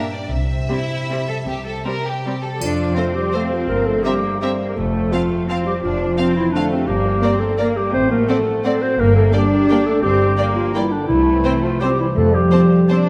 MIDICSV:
0, 0, Header, 1, 11, 480
1, 0, Start_track
1, 0, Key_signature, -1, "major"
1, 0, Tempo, 383632
1, 393, Time_signature, 3, 2, 24, 8
1, 2811, Tempo, 366972
1, 4251, Tempo, 354820
1, 8571, Tempo, 349447
1, 13851, Tempo, 358209
1, 17479, End_track
2, 0, Start_track
2, 0, Title_t, "Violin section"
2, 0, Program_c, 0, 48
2, 0, Note_on_c, 0, 76, 60
2, 158, Note_on_c, 0, 74, 61
2, 173, Note_off_c, 0, 76, 0
2, 372, Note_on_c, 0, 76, 68
2, 390, Note_off_c, 0, 74, 0
2, 2800, Note_off_c, 0, 76, 0
2, 3746, Note_on_c, 0, 77, 43
2, 3851, Note_off_c, 0, 77, 0
2, 4248, Note_on_c, 0, 77, 39
2, 4356, Note_off_c, 0, 77, 0
2, 5207, Note_on_c, 0, 82, 44
2, 5315, Note_off_c, 0, 82, 0
2, 5706, Note_on_c, 0, 82, 44
2, 5814, Note_off_c, 0, 82, 0
2, 6672, Note_on_c, 0, 81, 45
2, 6781, Note_off_c, 0, 81, 0
2, 7155, Note_on_c, 0, 81, 46
2, 7263, Note_off_c, 0, 81, 0
2, 8088, Note_on_c, 0, 81, 47
2, 8196, Note_off_c, 0, 81, 0
2, 8613, Note_on_c, 0, 81, 47
2, 8723, Note_off_c, 0, 81, 0
2, 9525, Note_on_c, 0, 82, 47
2, 9635, Note_off_c, 0, 82, 0
2, 10013, Note_on_c, 0, 82, 44
2, 10123, Note_off_c, 0, 82, 0
2, 10968, Note_on_c, 0, 78, 52
2, 11078, Note_off_c, 0, 78, 0
2, 11448, Note_on_c, 0, 78, 49
2, 11558, Note_off_c, 0, 78, 0
2, 12401, Note_on_c, 0, 79, 50
2, 12511, Note_off_c, 0, 79, 0
2, 12907, Note_on_c, 0, 79, 58
2, 13017, Note_off_c, 0, 79, 0
2, 13835, Note_on_c, 0, 79, 52
2, 13943, Note_off_c, 0, 79, 0
2, 14332, Note_on_c, 0, 79, 56
2, 14439, Note_off_c, 0, 79, 0
2, 15271, Note_on_c, 0, 79, 53
2, 15379, Note_off_c, 0, 79, 0
2, 15768, Note_on_c, 0, 79, 53
2, 15876, Note_off_c, 0, 79, 0
2, 16711, Note_on_c, 0, 81, 53
2, 16818, Note_off_c, 0, 81, 0
2, 17198, Note_on_c, 0, 81, 54
2, 17305, Note_off_c, 0, 81, 0
2, 17479, End_track
3, 0, Start_track
3, 0, Title_t, "Violin section"
3, 0, Program_c, 1, 48
3, 872, Note_on_c, 1, 64, 51
3, 1555, Note_off_c, 1, 64, 0
3, 1595, Note_on_c, 1, 69, 53
3, 1689, Note_off_c, 1, 69, 0
3, 1839, Note_on_c, 1, 67, 50
3, 2068, Note_off_c, 1, 67, 0
3, 2074, Note_on_c, 1, 69, 44
3, 2314, Note_off_c, 1, 69, 0
3, 2326, Note_on_c, 1, 70, 55
3, 2563, Note_on_c, 1, 67, 51
3, 2565, Note_off_c, 1, 70, 0
3, 3043, Note_on_c, 1, 69, 51
3, 3060, Note_off_c, 1, 67, 0
3, 3287, Note_off_c, 1, 69, 0
3, 3746, Note_on_c, 1, 72, 47
3, 3851, Note_off_c, 1, 72, 0
3, 4223, Note_on_c, 1, 72, 46
3, 4330, Note_off_c, 1, 72, 0
3, 5190, Note_on_c, 1, 76, 49
3, 5298, Note_off_c, 1, 76, 0
3, 5699, Note_on_c, 1, 76, 44
3, 5807, Note_off_c, 1, 76, 0
3, 6653, Note_on_c, 1, 77, 44
3, 6761, Note_off_c, 1, 77, 0
3, 7156, Note_on_c, 1, 77, 44
3, 7265, Note_off_c, 1, 77, 0
3, 8081, Note_on_c, 1, 77, 47
3, 8189, Note_off_c, 1, 77, 0
3, 8587, Note_on_c, 1, 77, 45
3, 8696, Note_off_c, 1, 77, 0
3, 9510, Note_on_c, 1, 74, 55
3, 9620, Note_off_c, 1, 74, 0
3, 9995, Note_on_c, 1, 74, 48
3, 10105, Note_off_c, 1, 74, 0
3, 10967, Note_on_c, 1, 74, 51
3, 11077, Note_off_c, 1, 74, 0
3, 11469, Note_on_c, 1, 74, 53
3, 11578, Note_off_c, 1, 74, 0
3, 12396, Note_on_c, 1, 74, 56
3, 12506, Note_off_c, 1, 74, 0
3, 12903, Note_on_c, 1, 74, 54
3, 13012, Note_off_c, 1, 74, 0
3, 13827, Note_on_c, 1, 74, 59
3, 13935, Note_off_c, 1, 74, 0
3, 14347, Note_on_c, 1, 74, 55
3, 14455, Note_off_c, 1, 74, 0
3, 15260, Note_on_c, 1, 72, 53
3, 15367, Note_off_c, 1, 72, 0
3, 15760, Note_on_c, 1, 72, 52
3, 15867, Note_off_c, 1, 72, 0
3, 16696, Note_on_c, 1, 72, 58
3, 16803, Note_off_c, 1, 72, 0
3, 17208, Note_on_c, 1, 72, 51
3, 17315, Note_off_c, 1, 72, 0
3, 17479, End_track
4, 0, Start_track
4, 0, Title_t, "Clarinet"
4, 0, Program_c, 2, 71
4, 3208, Note_on_c, 2, 67, 47
4, 3288, Note_on_c, 2, 65, 75
4, 3308, Note_off_c, 2, 67, 0
4, 3990, Note_on_c, 2, 67, 72
4, 4010, Note_off_c, 2, 65, 0
4, 4241, Note_off_c, 2, 67, 0
4, 4252, Note_on_c, 2, 69, 71
4, 4360, Note_off_c, 2, 69, 0
4, 4480, Note_on_c, 2, 65, 72
4, 4705, Note_on_c, 2, 70, 89
4, 4726, Note_off_c, 2, 65, 0
4, 4949, Note_on_c, 2, 69, 75
4, 4969, Note_off_c, 2, 70, 0
4, 5170, Note_on_c, 2, 67, 73
4, 5190, Note_off_c, 2, 69, 0
4, 5667, Note_off_c, 2, 67, 0
4, 5675, Note_on_c, 2, 67, 61
4, 5852, Note_off_c, 2, 67, 0
4, 6059, Note_on_c, 2, 70, 56
4, 6143, Note_on_c, 2, 69, 79
4, 6163, Note_off_c, 2, 70, 0
4, 6652, Note_on_c, 2, 65, 69
4, 6672, Note_off_c, 2, 69, 0
4, 7142, Note_off_c, 2, 65, 0
4, 7148, Note_on_c, 2, 65, 70
4, 7376, Note_off_c, 2, 65, 0
4, 7383, Note_on_c, 2, 67, 72
4, 7484, Note_off_c, 2, 67, 0
4, 7596, Note_on_c, 2, 65, 80
4, 8307, Note_off_c, 2, 65, 0
4, 8327, Note_on_c, 2, 64, 74
4, 8534, Note_off_c, 2, 64, 0
4, 8542, Note_on_c, 2, 62, 75
4, 8781, Note_off_c, 2, 62, 0
4, 8789, Note_on_c, 2, 60, 74
4, 9028, Note_on_c, 2, 67, 88
4, 9049, Note_off_c, 2, 60, 0
4, 9746, Note_on_c, 2, 69, 75
4, 9767, Note_off_c, 2, 67, 0
4, 10016, Note_on_c, 2, 70, 83
4, 10037, Note_off_c, 2, 69, 0
4, 10256, Note_on_c, 2, 67, 80
4, 10277, Note_off_c, 2, 70, 0
4, 10478, Note_off_c, 2, 67, 0
4, 10487, Note_on_c, 2, 72, 96
4, 10713, Note_off_c, 2, 72, 0
4, 10733, Note_on_c, 2, 70, 77
4, 10970, Note_on_c, 2, 69, 77
4, 10990, Note_off_c, 2, 70, 0
4, 11465, Note_off_c, 2, 69, 0
4, 11476, Note_on_c, 2, 69, 80
4, 11704, Note_on_c, 2, 72, 90
4, 11724, Note_off_c, 2, 69, 0
4, 11948, Note_on_c, 2, 70, 97
4, 11968, Note_off_c, 2, 72, 0
4, 12152, Note_off_c, 2, 70, 0
4, 12160, Note_on_c, 2, 69, 78
4, 12273, Note_off_c, 2, 69, 0
4, 12403, Note_on_c, 2, 67, 69
4, 12886, Note_off_c, 2, 67, 0
4, 12894, Note_on_c, 2, 67, 82
4, 13128, Note_on_c, 2, 69, 91
4, 13148, Note_off_c, 2, 67, 0
4, 13346, Note_off_c, 2, 69, 0
4, 13355, Note_on_c, 2, 67, 97
4, 14068, Note_off_c, 2, 67, 0
4, 14076, Note_on_c, 2, 65, 82
4, 14318, Note_off_c, 2, 65, 0
4, 14326, Note_on_c, 2, 64, 78
4, 14560, Note_on_c, 2, 62, 77
4, 14580, Note_off_c, 2, 64, 0
4, 14770, Note_off_c, 2, 62, 0
4, 14778, Note_on_c, 2, 64, 97
4, 15526, Note_on_c, 2, 65, 85
4, 15547, Note_off_c, 2, 64, 0
4, 15754, Note_on_c, 2, 67, 80
4, 15774, Note_off_c, 2, 65, 0
4, 16003, Note_off_c, 2, 67, 0
4, 16022, Note_on_c, 2, 64, 78
4, 16121, Note_off_c, 2, 64, 0
4, 16239, Note_on_c, 2, 69, 97
4, 16476, Note_on_c, 2, 67, 84
4, 16496, Note_off_c, 2, 69, 0
4, 17326, Note_off_c, 2, 67, 0
4, 17479, End_track
5, 0, Start_track
5, 0, Title_t, "Harp"
5, 0, Program_c, 3, 46
5, 0, Note_on_c, 3, 43, 59
5, 0, Note_on_c, 3, 62, 43
5, 0, Note_on_c, 3, 67, 42
5, 0, Note_on_c, 3, 70, 39
5, 0, Note_on_c, 3, 74, 44
5, 149, Note_off_c, 3, 62, 0
5, 164, Note_on_c, 3, 62, 39
5, 384, Note_on_c, 3, 48, 52
5, 411, Note_off_c, 3, 62, 0
5, 414, Note_off_c, 3, 74, 0
5, 415, Note_off_c, 3, 43, 0
5, 415, Note_off_c, 3, 70, 0
5, 618, Note_on_c, 3, 60, 34
5, 869, Note_on_c, 3, 72, 37
5, 1110, Note_off_c, 3, 67, 0
5, 1125, Note_on_c, 3, 67, 37
5, 1346, Note_off_c, 3, 60, 0
5, 1361, Note_on_c, 3, 60, 34
5, 1599, Note_on_c, 3, 55, 33
5, 1813, Note_off_c, 3, 48, 0
5, 1828, Note_on_c, 3, 48, 49
5, 2058, Note_off_c, 3, 60, 0
5, 2073, Note_on_c, 3, 60, 36
5, 2313, Note_off_c, 3, 72, 0
5, 2328, Note_on_c, 3, 72, 32
5, 2557, Note_off_c, 3, 67, 0
5, 2572, Note_on_c, 3, 67, 38
5, 2809, Note_off_c, 3, 60, 0
5, 2824, Note_on_c, 3, 60, 39
5, 3061, Note_off_c, 3, 55, 0
5, 3076, Note_on_c, 3, 55, 29
5, 3309, Note_off_c, 3, 48, 0
5, 3313, Note_on_c, 3, 41, 52
5, 3317, Note_off_c, 3, 67, 0
5, 3321, Note_off_c, 3, 55, 0
5, 3521, Note_off_c, 3, 60, 0
5, 3537, Note_on_c, 3, 60, 44
5, 3771, Note_on_c, 3, 69, 37
5, 4008, Note_off_c, 3, 72, 0
5, 4024, Note_on_c, 3, 72, 42
5, 4268, Note_on_c, 3, 77, 46
5, 4491, Note_off_c, 3, 72, 0
5, 4507, Note_on_c, 3, 72, 37
5, 4730, Note_on_c, 3, 43, 57
5, 4742, Note_off_c, 3, 69, 0
5, 4746, Note_off_c, 3, 41, 0
5, 4746, Note_off_c, 3, 77, 0
5, 4940, Note_off_c, 3, 60, 0
5, 4957, Note_on_c, 3, 60, 39
5, 5202, Note_on_c, 3, 70, 39
5, 5439, Note_off_c, 3, 72, 0
5, 5456, Note_on_c, 3, 72, 39
5, 5709, Note_on_c, 3, 76, 51
5, 5933, Note_off_c, 3, 72, 0
5, 5949, Note_on_c, 3, 72, 40
5, 6179, Note_on_c, 3, 41, 58
5, 6187, Note_off_c, 3, 70, 0
5, 6189, Note_off_c, 3, 43, 0
5, 6190, Note_off_c, 3, 76, 0
5, 6406, Note_off_c, 3, 60, 0
5, 6422, Note_on_c, 3, 60, 40
5, 6663, Note_on_c, 3, 69, 39
5, 6893, Note_off_c, 3, 72, 0
5, 6909, Note_on_c, 3, 72, 43
5, 7154, Note_on_c, 3, 77, 43
5, 7379, Note_off_c, 3, 72, 0
5, 7395, Note_on_c, 3, 72, 43
5, 7611, Note_off_c, 3, 41, 0
5, 7627, Note_on_c, 3, 41, 58
5, 7837, Note_off_c, 3, 60, 0
5, 7853, Note_on_c, 3, 60, 45
5, 8076, Note_off_c, 3, 69, 0
5, 8092, Note_on_c, 3, 69, 41
5, 8320, Note_off_c, 3, 72, 0
5, 8336, Note_on_c, 3, 72, 48
5, 8567, Note_off_c, 3, 77, 0
5, 8583, Note_on_c, 3, 77, 45
5, 8803, Note_off_c, 3, 72, 0
5, 8820, Note_on_c, 3, 72, 46
5, 9045, Note_on_c, 3, 43, 55
5, 9057, Note_off_c, 3, 72, 0
5, 9058, Note_off_c, 3, 77, 0
5, 9061, Note_off_c, 3, 69, 0
5, 9063, Note_off_c, 3, 60, 0
5, 9064, Note_off_c, 3, 41, 0
5, 9270, Note_on_c, 3, 55, 44
5, 9518, Note_on_c, 3, 70, 41
5, 9767, Note_on_c, 3, 67, 52
5, 10023, Note_on_c, 3, 74, 51
5, 10245, Note_off_c, 3, 67, 0
5, 10261, Note_on_c, 3, 67, 50
5, 10493, Note_on_c, 3, 45, 66
5, 10507, Note_off_c, 3, 43, 0
5, 10507, Note_off_c, 3, 55, 0
5, 10507, Note_off_c, 3, 67, 0
5, 10509, Note_off_c, 3, 70, 0
5, 10727, Note_on_c, 3, 54, 44
5, 10969, Note_on_c, 3, 72, 46
5, 11222, Note_on_c, 3, 66, 51
5, 11453, Note_off_c, 3, 74, 0
5, 11470, Note_on_c, 3, 74, 52
5, 11689, Note_off_c, 3, 66, 0
5, 11705, Note_on_c, 3, 66, 49
5, 11933, Note_on_c, 3, 43, 63
5, 11951, Note_off_c, 3, 66, 0
5, 11952, Note_off_c, 3, 72, 0
5, 11953, Note_off_c, 3, 45, 0
5, 11954, Note_off_c, 3, 54, 0
5, 12165, Note_on_c, 3, 55, 48
5, 12414, Note_on_c, 3, 70, 46
5, 12661, Note_on_c, 3, 67, 50
5, 12887, Note_off_c, 3, 74, 0
5, 12903, Note_on_c, 3, 74, 47
5, 13134, Note_off_c, 3, 67, 0
5, 13151, Note_on_c, 3, 67, 53
5, 13364, Note_off_c, 3, 43, 0
5, 13380, Note_on_c, 3, 43, 64
5, 13599, Note_off_c, 3, 55, 0
5, 13616, Note_on_c, 3, 55, 46
5, 13842, Note_off_c, 3, 70, 0
5, 13858, Note_on_c, 3, 70, 47
5, 14082, Note_off_c, 3, 67, 0
5, 14098, Note_on_c, 3, 67, 55
5, 14333, Note_off_c, 3, 74, 0
5, 14349, Note_on_c, 3, 74, 54
5, 14556, Note_off_c, 3, 67, 0
5, 14572, Note_on_c, 3, 67, 54
5, 14812, Note_on_c, 3, 48, 67
5, 14820, Note_off_c, 3, 43, 0
5, 14822, Note_off_c, 3, 70, 0
5, 14822, Note_off_c, 3, 74, 0
5, 15036, Note_on_c, 3, 60, 45
5, 15274, Note_off_c, 3, 67, 0
5, 15290, Note_on_c, 3, 67, 47
5, 15546, Note_on_c, 3, 72, 52
5, 15790, Note_on_c, 3, 84, 53
5, 16014, Note_off_c, 3, 72, 0
5, 16030, Note_on_c, 3, 72, 53
5, 16257, Note_on_c, 3, 53, 71
5, 16262, Note_off_c, 3, 55, 0
5, 16263, Note_off_c, 3, 48, 0
5, 16265, Note_off_c, 3, 67, 0
5, 16474, Note_off_c, 3, 60, 0
5, 16490, Note_on_c, 3, 60, 47
5, 16732, Note_on_c, 3, 69, 46
5, 16959, Note_off_c, 3, 72, 0
5, 16975, Note_on_c, 3, 72, 51
5, 17211, Note_off_c, 3, 84, 0
5, 17227, Note_on_c, 3, 84, 49
5, 17454, Note_off_c, 3, 72, 0
5, 17479, Note_off_c, 3, 53, 0
5, 17479, Note_off_c, 3, 60, 0
5, 17479, Note_off_c, 3, 69, 0
5, 17479, Note_off_c, 3, 84, 0
5, 17479, End_track
6, 0, Start_track
6, 0, Title_t, "Viola section"
6, 0, Program_c, 4, 48
6, 878, Note_on_c, 4, 55, 44
6, 885, Note_on_c, 4, 60, 39
6, 978, Note_off_c, 4, 55, 0
6, 986, Note_off_c, 4, 60, 0
6, 1392, Note_on_c, 4, 55, 41
6, 1392, Note_on_c, 4, 60, 39
6, 1492, Note_off_c, 4, 55, 0
6, 1492, Note_off_c, 4, 60, 0
6, 2331, Note_on_c, 4, 60, 39
6, 2335, Note_on_c, 4, 55, 39
6, 2431, Note_off_c, 4, 60, 0
6, 2435, Note_off_c, 4, 55, 0
6, 2828, Note_on_c, 4, 60, 39
6, 2831, Note_on_c, 4, 55, 40
6, 2932, Note_off_c, 4, 60, 0
6, 2935, Note_off_c, 4, 55, 0
6, 3769, Note_on_c, 4, 57, 43
6, 3874, Note_off_c, 4, 57, 0
6, 4257, Note_on_c, 4, 57, 41
6, 4365, Note_off_c, 4, 57, 0
6, 5215, Note_on_c, 4, 60, 48
6, 5324, Note_off_c, 4, 60, 0
6, 5710, Note_on_c, 4, 60, 42
6, 5818, Note_off_c, 4, 60, 0
6, 6663, Note_on_c, 4, 60, 50
6, 6772, Note_off_c, 4, 60, 0
6, 7151, Note_on_c, 4, 60, 51
6, 7260, Note_off_c, 4, 60, 0
6, 8088, Note_on_c, 4, 60, 49
6, 8196, Note_off_c, 4, 60, 0
6, 8584, Note_on_c, 4, 60, 45
6, 8693, Note_off_c, 4, 60, 0
6, 9504, Note_on_c, 4, 58, 55
6, 9614, Note_off_c, 4, 58, 0
6, 10016, Note_on_c, 4, 58, 49
6, 10126, Note_off_c, 4, 58, 0
6, 10974, Note_on_c, 4, 60, 57
6, 11084, Note_off_c, 4, 60, 0
6, 11467, Note_on_c, 4, 60, 52
6, 11577, Note_off_c, 4, 60, 0
6, 12417, Note_on_c, 4, 58, 60
6, 12527, Note_off_c, 4, 58, 0
6, 12912, Note_on_c, 4, 58, 54
6, 13022, Note_off_c, 4, 58, 0
6, 13848, Note_on_c, 4, 58, 57
6, 13955, Note_off_c, 4, 58, 0
6, 14350, Note_on_c, 4, 58, 52
6, 14457, Note_off_c, 4, 58, 0
6, 15287, Note_on_c, 4, 60, 61
6, 15394, Note_off_c, 4, 60, 0
6, 15793, Note_on_c, 4, 60, 51
6, 15900, Note_off_c, 4, 60, 0
6, 16723, Note_on_c, 4, 60, 56
6, 16830, Note_off_c, 4, 60, 0
6, 17235, Note_on_c, 4, 60, 50
6, 17342, Note_off_c, 4, 60, 0
6, 17479, End_track
7, 0, Start_track
7, 0, Title_t, "Cello section"
7, 0, Program_c, 5, 48
7, 386, Note_on_c, 5, 48, 48
7, 766, Note_off_c, 5, 48, 0
7, 1827, Note_on_c, 5, 48, 45
7, 2208, Note_off_c, 5, 48, 0
7, 3287, Note_on_c, 5, 62, 62
7, 3725, Note_off_c, 5, 62, 0
7, 3749, Note_on_c, 5, 60, 55
7, 5187, Note_on_c, 5, 58, 60
7, 5188, Note_off_c, 5, 60, 0
7, 5675, Note_off_c, 5, 58, 0
7, 5691, Note_on_c, 5, 58, 49
7, 6153, Note_off_c, 5, 58, 0
7, 6174, Note_on_c, 5, 57, 46
7, 7143, Note_off_c, 5, 57, 0
7, 7151, Note_on_c, 5, 60, 51
7, 7609, Note_off_c, 5, 60, 0
7, 7617, Note_on_c, 5, 62, 58
7, 8072, Note_off_c, 5, 62, 0
7, 8085, Note_on_c, 5, 60, 61
7, 8566, Note_off_c, 5, 60, 0
7, 8572, Note_on_c, 5, 57, 57
7, 9025, Note_off_c, 5, 57, 0
7, 9038, Note_on_c, 5, 58, 60
7, 9498, Note_on_c, 5, 60, 55
7, 9505, Note_off_c, 5, 58, 0
7, 10005, Note_off_c, 5, 60, 0
7, 10007, Note_on_c, 5, 58, 56
7, 10473, Note_off_c, 5, 58, 0
7, 10487, Note_on_c, 5, 57, 55
7, 11459, Note_on_c, 5, 60, 55
7, 11463, Note_off_c, 5, 57, 0
7, 11929, Note_off_c, 5, 60, 0
7, 11933, Note_on_c, 5, 58, 62
7, 12405, Note_off_c, 5, 58, 0
7, 12417, Note_on_c, 5, 62, 73
7, 13366, Note_on_c, 5, 60, 64
7, 13376, Note_off_c, 5, 62, 0
7, 13836, Note_off_c, 5, 60, 0
7, 13840, Note_on_c, 5, 58, 65
7, 14326, Note_off_c, 5, 58, 0
7, 14341, Note_on_c, 5, 55, 59
7, 14800, Note_off_c, 5, 55, 0
7, 14802, Note_on_c, 5, 57, 62
7, 15758, Note_off_c, 5, 57, 0
7, 15773, Note_on_c, 5, 55, 59
7, 16228, Note_on_c, 5, 53, 53
7, 16237, Note_off_c, 5, 55, 0
7, 17188, Note_off_c, 5, 53, 0
7, 17212, Note_on_c, 5, 62, 68
7, 17479, Note_off_c, 5, 62, 0
7, 17479, End_track
8, 0, Start_track
8, 0, Title_t, "French horn section"
8, 0, Program_c, 6, 60
8, 3308, Note_on_c, 6, 53, 61
8, 3964, Note_off_c, 6, 53, 0
8, 4012, Note_on_c, 6, 55, 59
8, 4253, Note_off_c, 6, 55, 0
8, 4258, Note_on_c, 6, 57, 60
8, 4495, Note_off_c, 6, 57, 0
8, 4508, Note_on_c, 6, 53, 58
8, 4720, Note_on_c, 6, 58, 72
8, 4728, Note_off_c, 6, 53, 0
8, 4945, Note_off_c, 6, 58, 0
8, 4971, Note_on_c, 6, 57, 64
8, 5206, Note_off_c, 6, 57, 0
8, 5206, Note_on_c, 6, 55, 54
8, 5692, Note_off_c, 6, 55, 0
8, 5718, Note_on_c, 6, 55, 56
8, 6167, Note_off_c, 6, 55, 0
8, 6183, Note_on_c, 6, 57, 68
8, 6644, Note_off_c, 6, 57, 0
8, 6664, Note_on_c, 6, 53, 60
8, 7129, Note_off_c, 6, 53, 0
8, 7146, Note_on_c, 6, 53, 55
8, 7375, Note_off_c, 6, 53, 0
8, 7382, Note_on_c, 6, 55, 51
8, 7483, Note_off_c, 6, 55, 0
8, 7617, Note_on_c, 6, 53, 65
8, 8317, Note_off_c, 6, 53, 0
8, 8338, Note_on_c, 6, 52, 56
8, 8577, Note_off_c, 6, 52, 0
8, 8590, Note_on_c, 6, 50, 67
8, 8819, Note_off_c, 6, 50, 0
8, 8856, Note_on_c, 6, 48, 60
8, 9057, Note_off_c, 6, 48, 0
8, 9065, Note_on_c, 6, 55, 65
8, 9773, Note_off_c, 6, 55, 0
8, 9790, Note_on_c, 6, 57, 59
8, 9896, Note_off_c, 6, 57, 0
8, 10019, Note_on_c, 6, 58, 71
8, 10251, Note_off_c, 6, 58, 0
8, 10259, Note_on_c, 6, 55, 70
8, 10467, Note_on_c, 6, 60, 81
8, 10487, Note_off_c, 6, 55, 0
8, 10707, Note_off_c, 6, 60, 0
8, 10709, Note_on_c, 6, 58, 73
8, 10957, Note_off_c, 6, 58, 0
8, 10965, Note_on_c, 6, 57, 64
8, 11446, Note_off_c, 6, 57, 0
8, 11463, Note_on_c, 6, 57, 61
8, 11570, Note_off_c, 6, 57, 0
8, 11697, Note_on_c, 6, 60, 72
8, 11924, Note_off_c, 6, 60, 0
8, 11937, Note_on_c, 6, 58, 83
8, 12169, Note_off_c, 6, 58, 0
8, 12172, Note_on_c, 6, 57, 75
8, 12412, Note_off_c, 6, 57, 0
8, 12439, Note_on_c, 6, 55, 68
8, 12896, Note_off_c, 6, 55, 0
8, 12913, Note_on_c, 6, 55, 69
8, 13019, Note_off_c, 6, 55, 0
8, 13150, Note_on_c, 6, 57, 67
8, 13372, Note_off_c, 6, 57, 0
8, 13376, Note_on_c, 6, 55, 76
8, 14098, Note_off_c, 6, 55, 0
8, 14100, Note_on_c, 6, 53, 69
8, 14342, Note_off_c, 6, 53, 0
8, 14348, Note_on_c, 6, 52, 73
8, 14570, Note_on_c, 6, 50, 63
8, 14574, Note_off_c, 6, 52, 0
8, 14797, Note_off_c, 6, 50, 0
8, 14797, Note_on_c, 6, 52, 73
8, 15519, Note_on_c, 6, 53, 65
8, 15526, Note_off_c, 6, 52, 0
8, 15765, Note_on_c, 6, 55, 69
8, 15772, Note_off_c, 6, 53, 0
8, 16001, Note_on_c, 6, 52, 72
8, 16008, Note_off_c, 6, 55, 0
8, 16233, Note_off_c, 6, 52, 0
8, 16237, Note_on_c, 6, 57, 82
8, 16445, Note_on_c, 6, 55, 71
8, 16466, Note_off_c, 6, 57, 0
8, 17469, Note_off_c, 6, 55, 0
8, 17479, End_track
9, 0, Start_track
9, 0, Title_t, "Timpani"
9, 0, Program_c, 7, 47
9, 14801, Note_on_c, 7, 48, 56
9, 15477, Note_off_c, 7, 48, 0
9, 16247, Note_on_c, 7, 41, 63
9, 16919, Note_off_c, 7, 41, 0
9, 17479, End_track
10, 0, Start_track
10, 0, Title_t, "Double bass section"
10, 0, Program_c, 8, 48
10, 397, Note_on_c, 8, 36, 52
10, 772, Note_off_c, 8, 36, 0
10, 1824, Note_on_c, 8, 36, 54
10, 2207, Note_off_c, 8, 36, 0
10, 3279, Note_on_c, 8, 41, 55
10, 3672, Note_off_c, 8, 41, 0
10, 4710, Note_on_c, 8, 31, 58
10, 5107, Note_off_c, 8, 31, 0
10, 6171, Note_on_c, 8, 29, 58
10, 6565, Note_off_c, 8, 29, 0
10, 7616, Note_on_c, 8, 29, 54
10, 7998, Note_off_c, 8, 29, 0
10, 9029, Note_on_c, 8, 31, 63
10, 9417, Note_off_c, 8, 31, 0
10, 10484, Note_on_c, 8, 33, 66
10, 10878, Note_off_c, 8, 33, 0
10, 11931, Note_on_c, 8, 31, 64
10, 12331, Note_off_c, 8, 31, 0
10, 13366, Note_on_c, 8, 31, 69
10, 13761, Note_off_c, 8, 31, 0
10, 14787, Note_on_c, 8, 36, 68
10, 15185, Note_off_c, 8, 36, 0
10, 16232, Note_on_c, 8, 41, 69
10, 16625, Note_off_c, 8, 41, 0
10, 17479, End_track
11, 0, Start_track
11, 0, Title_t, "Drums"
11, 3292, Note_on_c, 9, 81, 37
11, 3423, Note_off_c, 9, 81, 0
11, 17479, End_track
0, 0, End_of_file